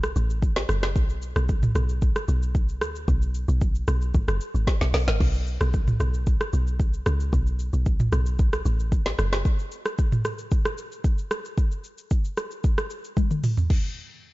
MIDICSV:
0, 0, Header, 1, 3, 480
1, 0, Start_track
1, 0, Tempo, 530973
1, 865, Time_signature, 4, 2, 24, 8
1, 12957, End_track
2, 0, Start_track
2, 0, Title_t, "Log drum bass"
2, 0, Program_c, 0, 39
2, 0, Note_on_c, 0, 35, 101
2, 118, Note_off_c, 0, 35, 0
2, 145, Note_on_c, 0, 33, 101
2, 597, Note_off_c, 0, 33, 0
2, 625, Note_on_c, 0, 30, 95
2, 865, Note_on_c, 0, 35, 103
2, 879, Note_off_c, 0, 30, 0
2, 1209, Note_off_c, 0, 35, 0
2, 1229, Note_on_c, 0, 35, 90
2, 1564, Note_off_c, 0, 35, 0
2, 1584, Note_on_c, 0, 35, 100
2, 1928, Note_off_c, 0, 35, 0
2, 2065, Note_on_c, 0, 35, 97
2, 2545, Note_on_c, 0, 38, 91
2, 2558, Note_off_c, 0, 35, 0
2, 2771, Note_off_c, 0, 38, 0
2, 2785, Note_on_c, 0, 35, 105
2, 3128, Note_off_c, 0, 35, 0
2, 3149, Note_on_c, 0, 35, 105
2, 3484, Note_off_c, 0, 35, 0
2, 3506, Note_on_c, 0, 35, 107
2, 3732, Note_off_c, 0, 35, 0
2, 3747, Note_on_c, 0, 32, 96
2, 3864, Note_off_c, 0, 32, 0
2, 3869, Note_on_c, 0, 30, 97
2, 3978, Note_off_c, 0, 30, 0
2, 4109, Note_on_c, 0, 32, 89
2, 4218, Note_off_c, 0, 32, 0
2, 4350, Note_on_c, 0, 35, 99
2, 4459, Note_off_c, 0, 35, 0
2, 4465, Note_on_c, 0, 35, 92
2, 4583, Note_off_c, 0, 35, 0
2, 4589, Note_on_c, 0, 32, 97
2, 4698, Note_off_c, 0, 32, 0
2, 4706, Note_on_c, 0, 35, 110
2, 5049, Note_off_c, 0, 35, 0
2, 5069, Note_on_c, 0, 35, 99
2, 5404, Note_off_c, 0, 35, 0
2, 5424, Note_on_c, 0, 35, 97
2, 5768, Note_off_c, 0, 35, 0
2, 5906, Note_on_c, 0, 35, 93
2, 6358, Note_off_c, 0, 35, 0
2, 6386, Note_on_c, 0, 37, 103
2, 6612, Note_off_c, 0, 37, 0
2, 6625, Note_on_c, 0, 35, 120
2, 6968, Note_off_c, 0, 35, 0
2, 6990, Note_on_c, 0, 35, 91
2, 7325, Note_off_c, 0, 35, 0
2, 7344, Note_on_c, 0, 35, 103
2, 7797, Note_off_c, 0, 35, 0
2, 7824, Note_on_c, 0, 33, 99
2, 8276, Note_off_c, 0, 33, 0
2, 8305, Note_on_c, 0, 30, 96
2, 8531, Note_off_c, 0, 30, 0
2, 12957, End_track
3, 0, Start_track
3, 0, Title_t, "Drums"
3, 31, Note_on_c, 9, 82, 57
3, 32, Note_on_c, 9, 37, 101
3, 121, Note_off_c, 9, 82, 0
3, 122, Note_off_c, 9, 37, 0
3, 145, Note_on_c, 9, 82, 86
3, 235, Note_off_c, 9, 82, 0
3, 272, Note_on_c, 9, 82, 54
3, 363, Note_off_c, 9, 82, 0
3, 384, Note_on_c, 9, 36, 98
3, 384, Note_on_c, 9, 82, 69
3, 474, Note_off_c, 9, 36, 0
3, 475, Note_off_c, 9, 82, 0
3, 509, Note_on_c, 9, 38, 73
3, 509, Note_on_c, 9, 82, 63
3, 599, Note_off_c, 9, 38, 0
3, 600, Note_off_c, 9, 82, 0
3, 623, Note_on_c, 9, 37, 100
3, 626, Note_on_c, 9, 82, 89
3, 714, Note_off_c, 9, 37, 0
3, 716, Note_off_c, 9, 82, 0
3, 751, Note_on_c, 9, 37, 97
3, 751, Note_on_c, 9, 38, 74
3, 751, Note_on_c, 9, 82, 61
3, 841, Note_off_c, 9, 37, 0
3, 841, Note_off_c, 9, 38, 0
3, 842, Note_off_c, 9, 82, 0
3, 865, Note_on_c, 9, 36, 121
3, 865, Note_on_c, 9, 82, 82
3, 955, Note_off_c, 9, 82, 0
3, 956, Note_off_c, 9, 36, 0
3, 990, Note_on_c, 9, 82, 52
3, 1081, Note_off_c, 9, 82, 0
3, 1104, Note_on_c, 9, 82, 85
3, 1195, Note_off_c, 9, 82, 0
3, 1229, Note_on_c, 9, 37, 100
3, 1230, Note_on_c, 9, 82, 56
3, 1320, Note_off_c, 9, 37, 0
3, 1321, Note_off_c, 9, 82, 0
3, 1345, Note_on_c, 9, 82, 82
3, 1348, Note_on_c, 9, 36, 95
3, 1435, Note_off_c, 9, 82, 0
3, 1439, Note_off_c, 9, 36, 0
3, 1471, Note_on_c, 9, 82, 66
3, 1472, Note_on_c, 9, 45, 108
3, 1561, Note_off_c, 9, 82, 0
3, 1562, Note_off_c, 9, 45, 0
3, 1585, Note_on_c, 9, 82, 103
3, 1586, Note_on_c, 9, 37, 92
3, 1676, Note_off_c, 9, 82, 0
3, 1677, Note_off_c, 9, 37, 0
3, 1709, Note_on_c, 9, 82, 61
3, 1800, Note_off_c, 9, 82, 0
3, 1825, Note_on_c, 9, 82, 74
3, 1828, Note_on_c, 9, 36, 108
3, 1915, Note_off_c, 9, 82, 0
3, 1918, Note_off_c, 9, 36, 0
3, 1951, Note_on_c, 9, 82, 57
3, 1952, Note_on_c, 9, 37, 97
3, 2042, Note_off_c, 9, 37, 0
3, 2042, Note_off_c, 9, 82, 0
3, 2064, Note_on_c, 9, 82, 87
3, 2155, Note_off_c, 9, 82, 0
3, 2192, Note_on_c, 9, 82, 52
3, 2283, Note_off_c, 9, 82, 0
3, 2304, Note_on_c, 9, 36, 99
3, 2305, Note_on_c, 9, 82, 70
3, 2394, Note_off_c, 9, 36, 0
3, 2395, Note_off_c, 9, 82, 0
3, 2430, Note_on_c, 9, 82, 62
3, 2520, Note_off_c, 9, 82, 0
3, 2544, Note_on_c, 9, 37, 106
3, 2546, Note_on_c, 9, 82, 93
3, 2635, Note_off_c, 9, 37, 0
3, 2637, Note_off_c, 9, 82, 0
3, 2672, Note_on_c, 9, 82, 63
3, 2762, Note_off_c, 9, 82, 0
3, 2785, Note_on_c, 9, 36, 122
3, 2786, Note_on_c, 9, 82, 79
3, 2876, Note_off_c, 9, 36, 0
3, 2876, Note_off_c, 9, 82, 0
3, 2911, Note_on_c, 9, 82, 53
3, 3001, Note_off_c, 9, 82, 0
3, 3024, Note_on_c, 9, 82, 82
3, 3114, Note_off_c, 9, 82, 0
3, 3150, Note_on_c, 9, 82, 53
3, 3241, Note_off_c, 9, 82, 0
3, 3265, Note_on_c, 9, 82, 78
3, 3268, Note_on_c, 9, 36, 96
3, 3355, Note_off_c, 9, 82, 0
3, 3358, Note_off_c, 9, 36, 0
3, 3390, Note_on_c, 9, 82, 65
3, 3481, Note_off_c, 9, 82, 0
3, 3505, Note_on_c, 9, 82, 100
3, 3506, Note_on_c, 9, 37, 91
3, 3596, Note_off_c, 9, 82, 0
3, 3597, Note_off_c, 9, 37, 0
3, 3629, Note_on_c, 9, 82, 59
3, 3720, Note_off_c, 9, 82, 0
3, 3744, Note_on_c, 9, 82, 69
3, 3747, Note_on_c, 9, 36, 115
3, 3835, Note_off_c, 9, 82, 0
3, 3838, Note_off_c, 9, 36, 0
3, 3871, Note_on_c, 9, 82, 56
3, 3872, Note_on_c, 9, 37, 102
3, 3962, Note_off_c, 9, 37, 0
3, 3962, Note_off_c, 9, 82, 0
3, 3985, Note_on_c, 9, 82, 82
3, 4075, Note_off_c, 9, 82, 0
3, 4112, Note_on_c, 9, 82, 53
3, 4203, Note_off_c, 9, 82, 0
3, 4224, Note_on_c, 9, 36, 96
3, 4225, Note_on_c, 9, 82, 72
3, 4226, Note_on_c, 9, 38, 63
3, 4314, Note_off_c, 9, 36, 0
3, 4316, Note_off_c, 9, 38, 0
3, 4316, Note_off_c, 9, 82, 0
3, 4350, Note_on_c, 9, 38, 71
3, 4350, Note_on_c, 9, 82, 60
3, 4440, Note_off_c, 9, 82, 0
3, 4441, Note_off_c, 9, 38, 0
3, 4466, Note_on_c, 9, 38, 99
3, 4466, Note_on_c, 9, 46, 71
3, 4466, Note_on_c, 9, 82, 90
3, 4556, Note_off_c, 9, 38, 0
3, 4557, Note_off_c, 9, 46, 0
3, 4557, Note_off_c, 9, 82, 0
3, 4591, Note_on_c, 9, 38, 103
3, 4592, Note_on_c, 9, 82, 63
3, 4681, Note_off_c, 9, 38, 0
3, 4682, Note_off_c, 9, 82, 0
3, 4705, Note_on_c, 9, 36, 118
3, 4706, Note_on_c, 9, 49, 82
3, 4796, Note_off_c, 9, 36, 0
3, 4796, Note_off_c, 9, 49, 0
3, 4831, Note_on_c, 9, 82, 53
3, 4921, Note_off_c, 9, 82, 0
3, 4944, Note_on_c, 9, 82, 84
3, 5035, Note_off_c, 9, 82, 0
3, 5069, Note_on_c, 9, 37, 100
3, 5070, Note_on_c, 9, 82, 55
3, 5160, Note_off_c, 9, 37, 0
3, 5160, Note_off_c, 9, 82, 0
3, 5185, Note_on_c, 9, 82, 78
3, 5188, Note_on_c, 9, 36, 98
3, 5275, Note_off_c, 9, 82, 0
3, 5279, Note_off_c, 9, 36, 0
3, 5311, Note_on_c, 9, 82, 64
3, 5313, Note_on_c, 9, 45, 106
3, 5401, Note_off_c, 9, 82, 0
3, 5403, Note_off_c, 9, 45, 0
3, 5426, Note_on_c, 9, 82, 96
3, 5427, Note_on_c, 9, 37, 91
3, 5517, Note_off_c, 9, 82, 0
3, 5518, Note_off_c, 9, 37, 0
3, 5550, Note_on_c, 9, 82, 61
3, 5640, Note_off_c, 9, 82, 0
3, 5665, Note_on_c, 9, 82, 70
3, 5668, Note_on_c, 9, 36, 111
3, 5755, Note_off_c, 9, 82, 0
3, 5758, Note_off_c, 9, 36, 0
3, 5792, Note_on_c, 9, 37, 105
3, 5792, Note_on_c, 9, 82, 56
3, 5882, Note_off_c, 9, 82, 0
3, 5883, Note_off_c, 9, 37, 0
3, 5905, Note_on_c, 9, 82, 88
3, 5995, Note_off_c, 9, 82, 0
3, 6032, Note_on_c, 9, 82, 55
3, 6122, Note_off_c, 9, 82, 0
3, 6144, Note_on_c, 9, 36, 97
3, 6144, Note_on_c, 9, 82, 70
3, 6234, Note_off_c, 9, 36, 0
3, 6235, Note_off_c, 9, 82, 0
3, 6269, Note_on_c, 9, 82, 62
3, 6360, Note_off_c, 9, 82, 0
3, 6383, Note_on_c, 9, 37, 106
3, 6385, Note_on_c, 9, 82, 92
3, 6474, Note_off_c, 9, 37, 0
3, 6476, Note_off_c, 9, 82, 0
3, 6511, Note_on_c, 9, 82, 59
3, 6601, Note_off_c, 9, 82, 0
3, 6625, Note_on_c, 9, 36, 115
3, 6625, Note_on_c, 9, 82, 81
3, 6715, Note_off_c, 9, 36, 0
3, 6716, Note_off_c, 9, 82, 0
3, 6750, Note_on_c, 9, 82, 54
3, 6841, Note_off_c, 9, 82, 0
3, 6864, Note_on_c, 9, 82, 82
3, 6954, Note_off_c, 9, 82, 0
3, 6990, Note_on_c, 9, 82, 53
3, 7080, Note_off_c, 9, 82, 0
3, 7104, Note_on_c, 9, 82, 79
3, 7108, Note_on_c, 9, 36, 95
3, 7195, Note_off_c, 9, 82, 0
3, 7198, Note_off_c, 9, 36, 0
3, 7229, Note_on_c, 9, 82, 63
3, 7231, Note_on_c, 9, 45, 106
3, 7320, Note_off_c, 9, 82, 0
3, 7321, Note_off_c, 9, 45, 0
3, 7344, Note_on_c, 9, 82, 100
3, 7345, Note_on_c, 9, 37, 93
3, 7435, Note_off_c, 9, 82, 0
3, 7436, Note_off_c, 9, 37, 0
3, 7468, Note_on_c, 9, 82, 61
3, 7558, Note_off_c, 9, 82, 0
3, 7584, Note_on_c, 9, 82, 73
3, 7587, Note_on_c, 9, 36, 115
3, 7674, Note_off_c, 9, 82, 0
3, 7677, Note_off_c, 9, 36, 0
3, 7711, Note_on_c, 9, 82, 55
3, 7712, Note_on_c, 9, 37, 101
3, 7801, Note_off_c, 9, 82, 0
3, 7802, Note_off_c, 9, 37, 0
3, 7824, Note_on_c, 9, 82, 85
3, 7914, Note_off_c, 9, 82, 0
3, 7952, Note_on_c, 9, 82, 53
3, 8042, Note_off_c, 9, 82, 0
3, 8064, Note_on_c, 9, 36, 94
3, 8065, Note_on_c, 9, 82, 72
3, 8154, Note_off_c, 9, 36, 0
3, 8155, Note_off_c, 9, 82, 0
3, 8189, Note_on_c, 9, 38, 77
3, 8190, Note_on_c, 9, 82, 62
3, 8280, Note_off_c, 9, 38, 0
3, 8280, Note_off_c, 9, 82, 0
3, 8305, Note_on_c, 9, 37, 108
3, 8307, Note_on_c, 9, 82, 89
3, 8395, Note_off_c, 9, 37, 0
3, 8397, Note_off_c, 9, 82, 0
3, 8432, Note_on_c, 9, 37, 96
3, 8432, Note_on_c, 9, 38, 72
3, 8432, Note_on_c, 9, 82, 60
3, 8522, Note_off_c, 9, 37, 0
3, 8522, Note_off_c, 9, 38, 0
3, 8522, Note_off_c, 9, 82, 0
3, 8545, Note_on_c, 9, 36, 117
3, 8546, Note_on_c, 9, 82, 75
3, 8635, Note_off_c, 9, 36, 0
3, 8636, Note_off_c, 9, 82, 0
3, 8671, Note_on_c, 9, 82, 54
3, 8761, Note_off_c, 9, 82, 0
3, 8784, Note_on_c, 9, 82, 82
3, 8875, Note_off_c, 9, 82, 0
3, 8909, Note_on_c, 9, 37, 97
3, 8910, Note_on_c, 9, 82, 56
3, 9000, Note_off_c, 9, 37, 0
3, 9001, Note_off_c, 9, 82, 0
3, 9025, Note_on_c, 9, 82, 80
3, 9028, Note_on_c, 9, 36, 96
3, 9115, Note_off_c, 9, 82, 0
3, 9118, Note_off_c, 9, 36, 0
3, 9150, Note_on_c, 9, 82, 64
3, 9151, Note_on_c, 9, 45, 104
3, 9240, Note_off_c, 9, 82, 0
3, 9242, Note_off_c, 9, 45, 0
3, 9265, Note_on_c, 9, 82, 97
3, 9266, Note_on_c, 9, 37, 90
3, 9355, Note_off_c, 9, 82, 0
3, 9356, Note_off_c, 9, 37, 0
3, 9388, Note_on_c, 9, 82, 61
3, 9479, Note_off_c, 9, 82, 0
3, 9504, Note_on_c, 9, 82, 73
3, 9507, Note_on_c, 9, 36, 115
3, 9594, Note_off_c, 9, 82, 0
3, 9597, Note_off_c, 9, 36, 0
3, 9631, Note_on_c, 9, 37, 107
3, 9631, Note_on_c, 9, 82, 57
3, 9721, Note_off_c, 9, 82, 0
3, 9722, Note_off_c, 9, 37, 0
3, 9744, Note_on_c, 9, 82, 88
3, 9834, Note_off_c, 9, 82, 0
3, 9872, Note_on_c, 9, 82, 58
3, 9962, Note_off_c, 9, 82, 0
3, 9983, Note_on_c, 9, 36, 96
3, 9984, Note_on_c, 9, 82, 73
3, 10074, Note_off_c, 9, 36, 0
3, 10075, Note_off_c, 9, 82, 0
3, 10109, Note_on_c, 9, 82, 61
3, 10200, Note_off_c, 9, 82, 0
3, 10224, Note_on_c, 9, 37, 104
3, 10226, Note_on_c, 9, 82, 86
3, 10314, Note_off_c, 9, 37, 0
3, 10316, Note_off_c, 9, 82, 0
3, 10351, Note_on_c, 9, 82, 62
3, 10441, Note_off_c, 9, 82, 0
3, 10465, Note_on_c, 9, 36, 113
3, 10465, Note_on_c, 9, 82, 80
3, 10555, Note_off_c, 9, 36, 0
3, 10555, Note_off_c, 9, 82, 0
3, 10590, Note_on_c, 9, 82, 54
3, 10680, Note_off_c, 9, 82, 0
3, 10703, Note_on_c, 9, 82, 86
3, 10794, Note_off_c, 9, 82, 0
3, 10830, Note_on_c, 9, 82, 56
3, 10920, Note_off_c, 9, 82, 0
3, 10945, Note_on_c, 9, 82, 80
3, 10948, Note_on_c, 9, 36, 91
3, 11035, Note_off_c, 9, 82, 0
3, 11038, Note_off_c, 9, 36, 0
3, 11071, Note_on_c, 9, 82, 61
3, 11161, Note_off_c, 9, 82, 0
3, 11186, Note_on_c, 9, 82, 100
3, 11187, Note_on_c, 9, 37, 93
3, 11276, Note_off_c, 9, 82, 0
3, 11277, Note_off_c, 9, 37, 0
3, 11310, Note_on_c, 9, 82, 62
3, 11400, Note_off_c, 9, 82, 0
3, 11425, Note_on_c, 9, 82, 70
3, 11428, Note_on_c, 9, 36, 112
3, 11515, Note_off_c, 9, 82, 0
3, 11518, Note_off_c, 9, 36, 0
3, 11552, Note_on_c, 9, 82, 57
3, 11553, Note_on_c, 9, 37, 103
3, 11642, Note_off_c, 9, 82, 0
3, 11643, Note_off_c, 9, 37, 0
3, 11665, Note_on_c, 9, 82, 86
3, 11755, Note_off_c, 9, 82, 0
3, 11792, Note_on_c, 9, 82, 54
3, 11883, Note_off_c, 9, 82, 0
3, 11904, Note_on_c, 9, 36, 97
3, 11905, Note_on_c, 9, 82, 69
3, 11906, Note_on_c, 9, 48, 65
3, 11994, Note_off_c, 9, 36, 0
3, 11995, Note_off_c, 9, 82, 0
3, 11996, Note_off_c, 9, 48, 0
3, 12030, Note_on_c, 9, 82, 62
3, 12031, Note_on_c, 9, 47, 71
3, 12120, Note_off_c, 9, 82, 0
3, 12121, Note_off_c, 9, 47, 0
3, 12146, Note_on_c, 9, 45, 99
3, 12147, Note_on_c, 9, 46, 74
3, 12147, Note_on_c, 9, 82, 92
3, 12237, Note_off_c, 9, 45, 0
3, 12237, Note_off_c, 9, 46, 0
3, 12237, Note_off_c, 9, 82, 0
3, 12271, Note_on_c, 9, 43, 97
3, 12272, Note_on_c, 9, 82, 62
3, 12362, Note_off_c, 9, 43, 0
3, 12363, Note_off_c, 9, 82, 0
3, 12386, Note_on_c, 9, 36, 107
3, 12386, Note_on_c, 9, 49, 92
3, 12476, Note_off_c, 9, 36, 0
3, 12476, Note_off_c, 9, 49, 0
3, 12957, End_track
0, 0, End_of_file